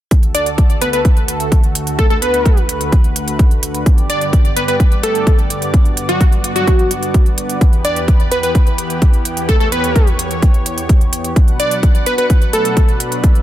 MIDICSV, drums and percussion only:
0, 0, Header, 1, 2, 480
1, 0, Start_track
1, 0, Key_signature, 2, "major"
1, 0, Tempo, 468750
1, 115, Time_signature, 4, 2, 24, 8
1, 13746, End_track
2, 0, Start_track
2, 0, Title_t, "Drums"
2, 114, Note_on_c, 9, 42, 49
2, 115, Note_on_c, 9, 36, 107
2, 217, Note_off_c, 9, 36, 0
2, 217, Note_off_c, 9, 42, 0
2, 235, Note_on_c, 9, 42, 23
2, 337, Note_off_c, 9, 42, 0
2, 354, Note_on_c, 9, 42, 84
2, 456, Note_off_c, 9, 42, 0
2, 474, Note_on_c, 9, 42, 46
2, 577, Note_off_c, 9, 42, 0
2, 594, Note_on_c, 9, 36, 96
2, 594, Note_on_c, 9, 42, 47
2, 697, Note_off_c, 9, 36, 0
2, 697, Note_off_c, 9, 42, 0
2, 714, Note_on_c, 9, 42, 24
2, 816, Note_off_c, 9, 42, 0
2, 835, Note_on_c, 9, 42, 80
2, 937, Note_off_c, 9, 42, 0
2, 954, Note_on_c, 9, 42, 47
2, 1057, Note_off_c, 9, 42, 0
2, 1074, Note_on_c, 9, 36, 96
2, 1074, Note_on_c, 9, 42, 45
2, 1176, Note_off_c, 9, 42, 0
2, 1177, Note_off_c, 9, 36, 0
2, 1195, Note_on_c, 9, 42, 24
2, 1297, Note_off_c, 9, 42, 0
2, 1314, Note_on_c, 9, 42, 81
2, 1416, Note_off_c, 9, 42, 0
2, 1434, Note_on_c, 9, 42, 45
2, 1537, Note_off_c, 9, 42, 0
2, 1554, Note_on_c, 9, 36, 104
2, 1554, Note_on_c, 9, 42, 49
2, 1657, Note_off_c, 9, 36, 0
2, 1657, Note_off_c, 9, 42, 0
2, 1674, Note_on_c, 9, 42, 23
2, 1777, Note_off_c, 9, 42, 0
2, 1794, Note_on_c, 9, 42, 88
2, 1897, Note_off_c, 9, 42, 0
2, 1914, Note_on_c, 9, 42, 46
2, 2017, Note_off_c, 9, 42, 0
2, 2034, Note_on_c, 9, 36, 108
2, 2035, Note_on_c, 9, 42, 47
2, 2137, Note_off_c, 9, 36, 0
2, 2137, Note_off_c, 9, 42, 0
2, 2154, Note_on_c, 9, 42, 23
2, 2257, Note_off_c, 9, 42, 0
2, 2275, Note_on_c, 9, 42, 82
2, 2377, Note_off_c, 9, 42, 0
2, 2394, Note_on_c, 9, 42, 45
2, 2497, Note_off_c, 9, 42, 0
2, 2514, Note_on_c, 9, 36, 99
2, 2515, Note_on_c, 9, 42, 45
2, 2617, Note_off_c, 9, 36, 0
2, 2617, Note_off_c, 9, 42, 0
2, 2635, Note_on_c, 9, 42, 23
2, 2737, Note_off_c, 9, 42, 0
2, 2755, Note_on_c, 9, 42, 82
2, 2857, Note_off_c, 9, 42, 0
2, 2874, Note_on_c, 9, 42, 46
2, 2977, Note_off_c, 9, 42, 0
2, 2994, Note_on_c, 9, 36, 98
2, 2995, Note_on_c, 9, 42, 44
2, 3097, Note_off_c, 9, 36, 0
2, 3097, Note_off_c, 9, 42, 0
2, 3115, Note_on_c, 9, 42, 22
2, 3217, Note_off_c, 9, 42, 0
2, 3235, Note_on_c, 9, 42, 80
2, 3337, Note_off_c, 9, 42, 0
2, 3355, Note_on_c, 9, 42, 46
2, 3457, Note_off_c, 9, 42, 0
2, 3474, Note_on_c, 9, 36, 102
2, 3475, Note_on_c, 9, 42, 46
2, 3577, Note_off_c, 9, 36, 0
2, 3577, Note_off_c, 9, 42, 0
2, 3595, Note_on_c, 9, 42, 22
2, 3698, Note_off_c, 9, 42, 0
2, 3715, Note_on_c, 9, 42, 84
2, 3817, Note_off_c, 9, 42, 0
2, 3835, Note_on_c, 9, 42, 45
2, 3937, Note_off_c, 9, 42, 0
2, 3954, Note_on_c, 9, 36, 110
2, 3955, Note_on_c, 9, 42, 47
2, 4057, Note_off_c, 9, 36, 0
2, 4057, Note_off_c, 9, 42, 0
2, 4075, Note_on_c, 9, 42, 23
2, 4177, Note_off_c, 9, 42, 0
2, 4195, Note_on_c, 9, 42, 77
2, 4297, Note_off_c, 9, 42, 0
2, 4315, Note_on_c, 9, 42, 43
2, 4417, Note_off_c, 9, 42, 0
2, 4434, Note_on_c, 9, 36, 100
2, 4435, Note_on_c, 9, 42, 44
2, 4537, Note_off_c, 9, 36, 0
2, 4538, Note_off_c, 9, 42, 0
2, 4555, Note_on_c, 9, 42, 22
2, 4657, Note_off_c, 9, 42, 0
2, 4675, Note_on_c, 9, 42, 79
2, 4777, Note_off_c, 9, 42, 0
2, 4794, Note_on_c, 9, 42, 45
2, 4897, Note_off_c, 9, 42, 0
2, 4914, Note_on_c, 9, 36, 102
2, 4915, Note_on_c, 9, 42, 42
2, 5016, Note_off_c, 9, 36, 0
2, 5017, Note_off_c, 9, 42, 0
2, 5034, Note_on_c, 9, 42, 23
2, 5137, Note_off_c, 9, 42, 0
2, 5155, Note_on_c, 9, 42, 80
2, 5257, Note_off_c, 9, 42, 0
2, 5275, Note_on_c, 9, 42, 46
2, 5377, Note_off_c, 9, 42, 0
2, 5394, Note_on_c, 9, 36, 109
2, 5395, Note_on_c, 9, 42, 44
2, 5497, Note_off_c, 9, 36, 0
2, 5497, Note_off_c, 9, 42, 0
2, 5515, Note_on_c, 9, 42, 21
2, 5617, Note_off_c, 9, 42, 0
2, 5635, Note_on_c, 9, 42, 80
2, 5737, Note_off_c, 9, 42, 0
2, 5755, Note_on_c, 9, 42, 42
2, 5857, Note_off_c, 9, 42, 0
2, 5874, Note_on_c, 9, 36, 107
2, 5874, Note_on_c, 9, 42, 46
2, 5977, Note_off_c, 9, 36, 0
2, 5977, Note_off_c, 9, 42, 0
2, 5995, Note_on_c, 9, 42, 22
2, 6097, Note_off_c, 9, 42, 0
2, 6115, Note_on_c, 9, 42, 80
2, 6217, Note_off_c, 9, 42, 0
2, 6235, Note_on_c, 9, 42, 45
2, 6338, Note_off_c, 9, 42, 0
2, 6354, Note_on_c, 9, 36, 106
2, 6355, Note_on_c, 9, 42, 43
2, 6457, Note_off_c, 9, 36, 0
2, 6457, Note_off_c, 9, 42, 0
2, 6475, Note_on_c, 9, 42, 23
2, 6578, Note_off_c, 9, 42, 0
2, 6595, Note_on_c, 9, 42, 76
2, 6697, Note_off_c, 9, 42, 0
2, 6715, Note_on_c, 9, 42, 42
2, 6817, Note_off_c, 9, 42, 0
2, 6835, Note_on_c, 9, 36, 105
2, 6835, Note_on_c, 9, 42, 41
2, 6937, Note_off_c, 9, 36, 0
2, 6937, Note_off_c, 9, 42, 0
2, 6955, Note_on_c, 9, 42, 22
2, 7057, Note_off_c, 9, 42, 0
2, 7074, Note_on_c, 9, 42, 76
2, 7177, Note_off_c, 9, 42, 0
2, 7195, Note_on_c, 9, 42, 43
2, 7297, Note_off_c, 9, 42, 0
2, 7314, Note_on_c, 9, 42, 44
2, 7315, Note_on_c, 9, 36, 108
2, 7417, Note_off_c, 9, 36, 0
2, 7417, Note_off_c, 9, 42, 0
2, 7435, Note_on_c, 9, 42, 21
2, 7537, Note_off_c, 9, 42, 0
2, 7555, Note_on_c, 9, 42, 80
2, 7657, Note_off_c, 9, 42, 0
2, 7675, Note_on_c, 9, 42, 44
2, 7777, Note_off_c, 9, 42, 0
2, 7794, Note_on_c, 9, 42, 47
2, 7795, Note_on_c, 9, 36, 108
2, 7897, Note_off_c, 9, 36, 0
2, 7897, Note_off_c, 9, 42, 0
2, 7914, Note_on_c, 9, 42, 22
2, 8017, Note_off_c, 9, 42, 0
2, 8035, Note_on_c, 9, 42, 78
2, 8137, Note_off_c, 9, 42, 0
2, 8155, Note_on_c, 9, 42, 42
2, 8257, Note_off_c, 9, 42, 0
2, 8275, Note_on_c, 9, 36, 98
2, 8275, Note_on_c, 9, 42, 43
2, 8377, Note_off_c, 9, 36, 0
2, 8377, Note_off_c, 9, 42, 0
2, 8395, Note_on_c, 9, 42, 22
2, 8497, Note_off_c, 9, 42, 0
2, 8515, Note_on_c, 9, 42, 78
2, 8617, Note_off_c, 9, 42, 0
2, 8635, Note_on_c, 9, 42, 45
2, 8737, Note_off_c, 9, 42, 0
2, 8754, Note_on_c, 9, 42, 44
2, 8755, Note_on_c, 9, 36, 103
2, 8857, Note_off_c, 9, 36, 0
2, 8857, Note_off_c, 9, 42, 0
2, 8874, Note_on_c, 9, 42, 21
2, 8977, Note_off_c, 9, 42, 0
2, 8994, Note_on_c, 9, 42, 77
2, 9096, Note_off_c, 9, 42, 0
2, 9114, Note_on_c, 9, 42, 44
2, 9217, Note_off_c, 9, 42, 0
2, 9234, Note_on_c, 9, 42, 45
2, 9235, Note_on_c, 9, 36, 103
2, 9336, Note_off_c, 9, 42, 0
2, 9337, Note_off_c, 9, 36, 0
2, 9354, Note_on_c, 9, 42, 21
2, 9457, Note_off_c, 9, 42, 0
2, 9475, Note_on_c, 9, 42, 78
2, 9577, Note_off_c, 9, 42, 0
2, 9595, Note_on_c, 9, 42, 43
2, 9697, Note_off_c, 9, 42, 0
2, 9715, Note_on_c, 9, 36, 103
2, 9715, Note_on_c, 9, 42, 48
2, 9817, Note_off_c, 9, 36, 0
2, 9817, Note_off_c, 9, 42, 0
2, 9835, Note_on_c, 9, 42, 22
2, 9937, Note_off_c, 9, 42, 0
2, 9955, Note_on_c, 9, 42, 82
2, 10057, Note_off_c, 9, 42, 0
2, 10075, Note_on_c, 9, 42, 45
2, 10177, Note_off_c, 9, 42, 0
2, 10195, Note_on_c, 9, 36, 95
2, 10195, Note_on_c, 9, 42, 44
2, 10297, Note_off_c, 9, 36, 0
2, 10297, Note_off_c, 9, 42, 0
2, 10315, Note_on_c, 9, 42, 24
2, 10417, Note_off_c, 9, 42, 0
2, 10435, Note_on_c, 9, 42, 83
2, 10537, Note_off_c, 9, 42, 0
2, 10555, Note_on_c, 9, 42, 44
2, 10657, Note_off_c, 9, 42, 0
2, 10674, Note_on_c, 9, 42, 45
2, 10675, Note_on_c, 9, 36, 98
2, 10777, Note_off_c, 9, 36, 0
2, 10777, Note_off_c, 9, 42, 0
2, 10795, Note_on_c, 9, 42, 22
2, 10897, Note_off_c, 9, 42, 0
2, 10915, Note_on_c, 9, 42, 81
2, 11018, Note_off_c, 9, 42, 0
2, 11035, Note_on_c, 9, 42, 48
2, 11138, Note_off_c, 9, 42, 0
2, 11155, Note_on_c, 9, 36, 100
2, 11155, Note_on_c, 9, 42, 47
2, 11257, Note_off_c, 9, 36, 0
2, 11257, Note_off_c, 9, 42, 0
2, 11275, Note_on_c, 9, 42, 22
2, 11378, Note_off_c, 9, 42, 0
2, 11394, Note_on_c, 9, 42, 85
2, 11497, Note_off_c, 9, 42, 0
2, 11515, Note_on_c, 9, 42, 48
2, 11617, Note_off_c, 9, 42, 0
2, 11635, Note_on_c, 9, 36, 100
2, 11635, Note_on_c, 9, 42, 51
2, 11737, Note_off_c, 9, 36, 0
2, 11737, Note_off_c, 9, 42, 0
2, 11754, Note_on_c, 9, 42, 23
2, 11857, Note_off_c, 9, 42, 0
2, 11875, Note_on_c, 9, 42, 88
2, 11977, Note_off_c, 9, 42, 0
2, 11994, Note_on_c, 9, 42, 49
2, 12097, Note_off_c, 9, 42, 0
2, 12114, Note_on_c, 9, 36, 94
2, 12115, Note_on_c, 9, 42, 47
2, 12217, Note_off_c, 9, 36, 0
2, 12217, Note_off_c, 9, 42, 0
2, 12234, Note_on_c, 9, 42, 25
2, 12337, Note_off_c, 9, 42, 0
2, 12354, Note_on_c, 9, 42, 85
2, 12456, Note_off_c, 9, 42, 0
2, 12474, Note_on_c, 9, 42, 50
2, 12576, Note_off_c, 9, 42, 0
2, 12594, Note_on_c, 9, 36, 96
2, 12594, Note_on_c, 9, 42, 45
2, 12696, Note_off_c, 9, 42, 0
2, 12697, Note_off_c, 9, 36, 0
2, 12714, Note_on_c, 9, 42, 24
2, 12817, Note_off_c, 9, 42, 0
2, 12834, Note_on_c, 9, 42, 85
2, 12936, Note_off_c, 9, 42, 0
2, 12954, Note_on_c, 9, 42, 49
2, 13057, Note_off_c, 9, 42, 0
2, 13074, Note_on_c, 9, 36, 98
2, 13074, Note_on_c, 9, 42, 50
2, 13176, Note_off_c, 9, 42, 0
2, 13177, Note_off_c, 9, 36, 0
2, 13194, Note_on_c, 9, 42, 24
2, 13296, Note_off_c, 9, 42, 0
2, 13314, Note_on_c, 9, 42, 86
2, 13416, Note_off_c, 9, 42, 0
2, 13434, Note_on_c, 9, 42, 49
2, 13536, Note_off_c, 9, 42, 0
2, 13553, Note_on_c, 9, 42, 52
2, 13554, Note_on_c, 9, 36, 104
2, 13656, Note_off_c, 9, 42, 0
2, 13657, Note_off_c, 9, 36, 0
2, 13674, Note_on_c, 9, 42, 23
2, 13746, Note_off_c, 9, 42, 0
2, 13746, End_track
0, 0, End_of_file